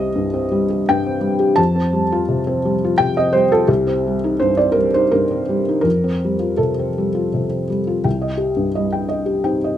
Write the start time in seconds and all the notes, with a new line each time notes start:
Already playing: C2 G3 C4 G4 D#5
0.16 G2
0.34 C4
0.51 G3
0.70 G4
0.89 G2 G5
1.06 C4
1.21 G3
1.39 G4
1.56 F2 A5
1.76 C4
1.93 G3
2.12 F4
2.29 C3
2.47 C4
2.65 G3
2.84 F4
2.98 C3 G5
3.17 C4 D#5
3.33 G3 C5
3.52 F4 A4
3.68 C2 G4
3.87 C4
4.07 G3
4.24 D#4
4.40 G2 C5
4.57 C4 D5
4.72 G3 A#4
4.94 D#4 C5
5.11 G2 A#4
5.31 C4
5.49 G3
5.69 D#4
5.81 F2 A#4
6.04 C4
6.25 G3
6.39 F4
6.57 C3 A4
6.79 C4
6.98 G3
7.15 F4
7.34 C3
7.50 C4
7.70 G3
7.87 F4
8.04 C2 G5
8.21 D#5
8.37 G4
8.57 G2
8.75 G3 D#5
8.93 G5
9.09 D#5
9.26 G4
9.44 C4 D#4 G5
9.64 D#5